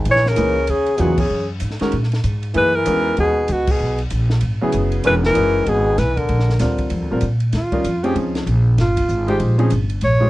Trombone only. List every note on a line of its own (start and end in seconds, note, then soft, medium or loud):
0.09 0.30 E3 medium
0.28 0.68 C#3 loud
0.68 1.00 C#3 medium
0.99 1.16 A#2 medium
1.16 1.46 C#3 medium
2.54 2.75 E3 medium
2.75 3.18 E3 medium
3.18 3.50 B2 medium
3.50 3.69 B2 medium
3.69 4.00 B2 medium
5.05 5.14 E3 medium
5.24 5.68 E3 medium
5.67 5.99 B2 medium
5.98 6.18 E3 medium
6.16 6.60 D3 medium